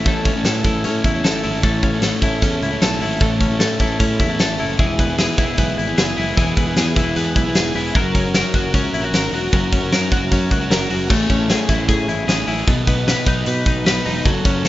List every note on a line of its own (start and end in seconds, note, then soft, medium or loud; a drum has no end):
0.00 0.25 C#4 medium
0.00 0.65 E4 medium
0.04 0.31 A1 loud
0.04 0.35 A2 medium
0.04 0.35 E3 medium
0.04 0.36 A3 medium
0.04 0.35 C#4 medium
0.04 0.34 E4 medium
0.04 0.33 A4 medium
0.04 kick loud
0.04 closed hi-hat medium
0.25 0.84 C#4 medium
0.25 kick medium
0.25 closed hi-hat medium
0.34 0.44 A1 medium
0.34 0.64 A3 soft
0.34 0.64 C#4 medium
0.34 0.64 E4 medium
0.34 0.65 A4 medium
0.44 0.62 A2 medium
0.44 1.23 A4 medium
0.44 snare medium
0.44 closed hi-hat medium
0.64 0.86 A1 medium
0.64 0.84 A2 medium
0.64 0.85 E3 medium
0.64 0.82 A3 medium
0.64 0.83 C#4 medium
0.64 0.84 E4 medium
0.64 0.85 A4 medium
0.64 kick medium
0.64 closed hi-hat medium
0.83 1.01 A2 medium
0.83 1.14 A3 medium
0.83 1.14 C#4 medium
0.83 1.14 E4 medium
0.83 1.13 A4 medium
0.83 closed hi-hat medium
1.04 1.21 E2 medium
1.04 1.43 E4 medium
1.04 kick medium
1.04 closed hi-hat medium
1.14 1.42 A3 soft
1.14 1.43 C#4 medium
1.14 1.44 E4 medium
1.14 1.44 A4 medium
1.24 1.41 A1 medium
1.24 1.63 A4 medium
1.24 snare loud
1.24 closed hi-hat medium
1.43 1.61 G#1 medium
1.43 1.62 A3 medium
1.43 1.63 C#4 medium
1.43 1.63 E4 medium
1.43 1.64 A4 medium
1.43 open hi-hat medium
1.63 2.10 A1 loud
1.63 1.93 A2 medium
1.63 1.93 E3 medium
1.63 1.93 A3 medium
1.63 1.93 C#4 medium
1.63 1.92 E4 medium
1.63 1.91 A4 medium
1.63 kick medium
1.63 closed hi-hat medium
1.83 2.41 C#4 medium
1.83 kick medium
1.83 closed hi-hat medium
1.92 2.21 A3 soft
1.92 2.21 C#4 soft
1.92 2.22 E4 soft
1.92 2.22 A4 medium
2.02 2.81 A4 medium
2.02 snare medium
2.02 closed hi-hat medium
2.22 2.39 A1 medium
2.22 2.42 A2 medium
2.22 2.42 E3 medium
2.22 2.40 A3 medium
2.22 2.41 C#4 medium
2.22 2.42 E4 medium
2.22 2.43 A4 medium
2.22 kick medium
2.22 closed hi-hat medium
2.42 2.59 E2 medium
2.42 2.72 A3 medium
2.42 2.71 C#4 medium
2.42 2.70 E4 medium
2.42 2.69 A4 medium
2.42 kick medium
2.42 closed hi-hat medium
2.62 2.79 C#2 medium
2.62 3.01 E4 soft
2.62 closed hi-hat medium
2.71 2.99 A3 soft
2.71 2.99 C#4 medium
2.71 3.00 E4 soft
2.71 3.01 A4 medium
2.81 2.98 B1 medium
2.81 3.20 A4 medium
2.81 snare loud
2.81 closed hi-hat medium
3.00 3.18 G#1 medium
3.00 3.19 A3 medium
3.00 3.19 C#4 medium
3.00 3.20 E4 medium
3.00 3.20 A4 medium
3.00 open hi-hat medium
3.19 3.46 A1 loud
3.19 3.50 A2 medium
3.19 3.50 E3 medium
3.19 3.50 A3 medium
3.19 3.49 C#4 medium
3.19 3.49 E4 medium
3.19 3.47 A4 medium
3.19 kick loud
3.19 closed hi-hat medium
3.40 3.98 C#4 medium
3.40 kick medium
3.40 closed hi-hat medium
3.49 3.59 A1 medium
3.49 3.78 A3 soft
3.49 3.79 C#4 soft
3.49 3.79 E4 soft
3.49 3.79 A4 medium
3.60 3.77 A2 loud
3.60 4.39 A4 medium
3.60 snare medium
3.60 closed hi-hat medium
3.79 3.97 A1 medium
3.79 4.00 A2 medium
3.79 4.00 E3 medium
3.79 3.97 A3 medium
3.79 3.99 C#4 medium
3.79 3.99 E4 medium
3.79 4.00 A4 medium
3.79 kick medium
3.79 closed hi-hat medium
3.98 4.21 A2 medium
3.98 4.29 A3 soft
3.98 4.29 C#4 medium
3.98 4.28 E4 medium
3.98 4.27 A4 medium
3.98 kick medium
3.98 closed hi-hat medium
4.20 4.37 E2 medium
4.20 4.59 E4 medium
4.20 kick medium
4.20 closed hi-hat medium
4.28 4.56 A3 soft
4.28 4.57 C#4 soft
4.28 4.58 E4 soft
4.28 4.59 A4 medium
4.39 4.56 A1 medium
4.39 4.80 A4 medium
4.39 snare loud
4.39 closed hi-hat medium
4.57 4.76 F#1 medium
4.57 4.77 A3 medium
4.57 4.78 C#4 medium
4.57 4.78 E4 medium
4.57 4.79 A4 medium
4.57 open hi-hat medium
4.78 5.26 E1 medium
4.78 5.08 E3 medium
4.78 5.08 G#3 medium
4.78 5.08 B3 medium
4.78 5.07 E4 medium
4.78 5.06 G#4 medium
4.78 kick loud
4.78 closed hi-hat medium
4.99 5.57 B3 medium
4.99 kick medium
4.99 closed hi-hat medium
5.07 5.36 B3 soft
5.07 5.37 E4 medium
5.07 5.37 G#4 soft
5.18 5.97 G#4 medium
5.18 snare loud
5.18 closed hi-hat medium
5.36 5.55 E1 medium
5.36 5.57 E3 medium
5.36 5.56 G#3 medium
5.36 5.56 B3 medium
5.36 5.57 E4 medium
5.36 5.58 G#4 medium
5.36 kick medium
5.36 closed hi-hat medium
5.57 5.75 B1 medium
5.57 5.87 G#3 medium
5.57 5.87 B3 medium
5.57 5.87 E4 medium
5.57 5.85 G#4 medium
5.57 kick medium
5.57 closed hi-hat medium
5.78 5.94 G#1 medium
5.78 6.16 E4 medium
5.78 closed hi-hat medium
5.86 6.16 B3 soft
5.86 6.17 E4 soft
5.86 6.17 G#4 medium
5.98 6.14 F#1 medium
5.98 6.36 G#4 medium
5.98 snare loud
5.98 closed hi-hat medium
6.16 6.34 F#1 medium
6.16 6.35 G#3 medium
6.16 6.36 B3 medium
6.16 6.37 E4 medium
6.16 6.37 G#4 medium
6.16 open hi-hat medium
6.36 6.54 E1 loud
6.36 6.66 E3 medium
6.36 6.66 G#3 medium
6.36 6.67 B3 medium
6.36 6.66 E4 medium
6.36 6.64 G#4 medium
6.36 kick loud
6.36 closed hi-hat medium
6.57 6.74 E1 medium
6.57 7.15 B3 medium
6.57 kick medium
6.57 closed hi-hat medium
6.65 6.94 B3 soft
6.65 6.95 E4 medium
6.65 6.96 G#4 medium
6.77 6.94 E2 loud
6.77 7.54 G#4 medium
6.77 snare medium
6.77 closed hi-hat medium
6.95 7.13 E1 medium
6.95 7.15 E3 medium
6.95 7.13 G#3 medium
6.95 7.14 B3 medium
6.95 7.15 E4 medium
6.95 7.16 G#4 medium
6.95 kick medium
6.95 closed hi-hat medium
7.14 7.33 E2 medium
7.14 7.45 G#3 medium
7.14 7.45 B3 medium
7.14 7.45 E4 medium
7.14 7.44 G#4 medium
7.14 closed hi-hat medium
7.36 7.53 B1 medium
7.36 7.74 E4 medium
7.36 kick medium
7.36 closed hi-hat medium
7.45 7.74 B3 soft
7.45 7.75 E4 soft
7.45 7.75 G#4 medium
7.55 7.72 E1 medium
7.55 7.95 G#4 medium
7.55 snare loud
7.55 closed hi-hat medium
7.74 7.92 E1 medium
7.74 7.94 G#3 medium
7.74 7.95 B3 medium
7.74 7.95 E4 medium
7.74 7.96 G#4 medium
7.74 open hi-hat medium
7.95 8.42 F#1 medium
7.95 8.24 F#3 medium
7.95 8.25 C#4 medium
7.95 8.24 F#4 medium
7.95 8.23 A#4 medium
7.95 kick loud
7.95 closed hi-hat medium
8.15 8.74 C#4 medium
8.15 kick medium
8.15 closed hi-hat medium
8.24 8.53 C#4 soft
8.24 8.54 F#4 soft
8.24 8.54 A#4 medium
8.34 9.13 A#4 medium
8.34 snare loud
8.34 closed hi-hat medium
8.53 8.71 F#1 medium
8.53 8.72 F#3 medium
8.53 8.73 C#4 medium
8.53 8.73 F#4 medium
8.53 8.74 A#4 medium
8.53 kick medium
8.53 closed hi-hat medium
8.73 8.91 C#2 medium
8.73 9.03 F#3 medium
8.73 9.03 C#4 medium
8.73 9.01 F#4 medium
8.73 9.00 A#4 medium
8.73 kick medium
8.73 closed hi-hat medium
8.93 9.10 A#1 medium
8.93 9.04 E4 medium
8.93 closed hi-hat medium
9.01 9.32 C#4 soft
9.01 9.33 F#4 soft
9.01 9.32 A#4 medium
9.13 9.30 G#1 medium
9.13 9.52 A#4 medium
9.13 snare loud
9.13 closed hi-hat medium
9.32 9.50 E1 medium
9.32 9.51 F#3 medium
9.32 9.52 C#4 medium
9.32 9.53 F#4 medium
9.32 9.53 A#4 medium
9.32 open hi-hat medium
9.52 9.78 F#1 loud
9.52 9.82 F#3 medium
9.52 9.82 C#4 medium
9.52 9.81 F#4 medium
9.52 9.79 A#4 medium
9.52 kick loud
9.52 closed hi-hat medium
9.73 10.32 C#4 medium
9.73 kick medium
9.73 closed hi-hat medium
9.80 9.91 F#1 medium
9.80 10.11 C#4 soft
9.80 10.11 F#4 soft
9.80 10.11 A#4 medium
9.92 10.09 F#2 medium
9.92 10.69 A#4 medium
9.92 snare loud
9.92 closed hi-hat medium
10.11 10.29 F#1 medium
10.11 10.29 F#3 medium
10.11 10.31 C#4 medium
10.11 10.31 F#4 medium
10.11 10.32 A#4 medium
10.11 kick medium
10.11 closed hi-hat medium
10.30 10.48 F#2 loud
10.30 10.60 F#3 medium
10.30 10.61 C#4 medium
10.30 10.60 F#4 medium
10.30 10.59 A#4 medium
10.30 kick medium
10.30 closed hi-hat medium
10.51 10.68 C#2 medium
10.51 10.89 F#4 soft
10.51 kick medium
10.51 closed hi-hat medium
10.60 10.89 C#4 soft
10.60 10.90 F#4 soft
10.60 10.90 A#4 soft
10.70 10.87 F#1 medium
10.70 11.14 A#4 medium
10.70 snare loud
10.70 closed hi-hat medium
10.89 11.07 F#1 medium
10.89 11.07 F#3 medium
10.89 11.08 C#4 medium
10.89 11.09 F#4 medium
10.89 11.09 A#4 medium
10.89 open hi-hat medium
11.08 11.27 A1 loud
11.08 11.27 A3 medium
11.08 11.28 C#4 medium
11.08 11.29 E4 medium
11.08 11.30 G#4 medium
11.08 kick loud
11.08 crash medium
11.28 11.55 A1 medium
11.28 11.39 A3 medium
11.28 11.39 C#4 medium
11.28 11.38 E4 medium
11.28 11.36 G#4 medium
11.28 kick medium
11.28 closed hi-hat medium
11.38 11.67 C#4 soft
11.38 11.68 E4 medium
11.38 11.68 G#4 medium
11.50 11.87 G#4 medium
11.50 snare medium
11.50 closed hi-hat medium
11.67 11.86 A1 medium
11.67 12.24 A3 medium
11.67 12.25 C#4 medium
11.67 12.27 E4 medium
11.67 12.28 G#4 medium
11.67 kick medium
11.67 closed hi-hat medium
11.88 12.06 A2 medium
11.88 12.27 G#4 medium
11.88 kick medium
11.88 closed hi-hat loud
12.08 12.25 A1 medium
12.08 12.47 E4 medium
12.08 closed hi-hat medium
12.25 12.45 A1 medium
12.25 12.44 A3 medium
12.25 12.45 C#4 medium
12.25 12.47 E4 medium
12.25 12.47 G#4 medium
12.25 snare loud
12.25 closed hi-hat medium
12.45 12.65 A1 medium
12.45 12.67 A3 medium
12.45 12.67 C#4 medium
12.45 12.68 E4 medium
12.45 12.68 G#4 medium
12.45 open hi-hat medium
12.66 12.84 B1 loud
12.66 12.87 B2 medium
12.66 12.87 D#3 medium
12.66 12.84 F#3 medium
12.66 12.85 B3 medium
12.66 12.87 D#4 medium
12.66 12.87 B4 medium
12.66 kick loud
12.66 closed hi-hat medium
12.85 13.13 B1 medium
12.85 12.96 F#3 medium
12.85 12.96 B3 medium
12.85 12.95 D#4 medium
12.85 12.93 B4 medium
12.85 kick medium
12.85 closed hi-hat medium
12.95 13.24 F#3 soft
12.95 13.25 B3 soft
12.95 13.26 D#4 soft
12.95 13.26 B4 medium
13.08 13.46 B4 medium
13.08 snare loud
13.08 closed hi-hat medium
13.25 13.43 B1 medium
13.25 13.83 F#3 medium
13.25 13.84 B3 medium
13.25 13.85 D#4 medium
13.25 13.86 B4 medium
13.25 kick medium
13.25 closed hi-hat medium
13.46 13.63 B2 loud
13.46 13.85 B4 medium
13.46 closed hi-hat medium
13.66 14.00 B1 medium
13.66 14.04 D#4 medium
13.66 kick medium
13.66 closed hi-hat medium
13.84 14.03 F#3 medium
13.84 14.04 B3 medium
13.84 14.05 D#4 medium
13.84 14.06 B4 medium
13.84 snare loud
13.84 closed hi-hat medium
14.04 14.23 E1 medium
14.04 14.24 F#3 medium
14.04 14.25 B3 medium
14.04 14.26 D#4 medium
14.04 14.26 B4 medium
14.04 open hi-hat medium
14.25 14.42 F#1 medium
14.25 14.43 F#3 medium
14.25 14.44 C#4 medium
14.25 14.45 F#4 medium
14.25 14.45 A4 loud
14.25 kick loud
14.25 closed hi-hat medium
14.44 14.68 F#1 medium
14.44 14.54 F#3 medium
14.44 14.55 C#4 medium
14.44 14.54 F#4 medium
14.44 14.52 A4 medium
14.44 kick medium
14.44 closed hi-hat medium
14.54 14.68 C#4 soft
14.54 14.68 F#4 medium
14.54 14.68 A4 medium
14.65 snare medium
14.65 closed hi-hat medium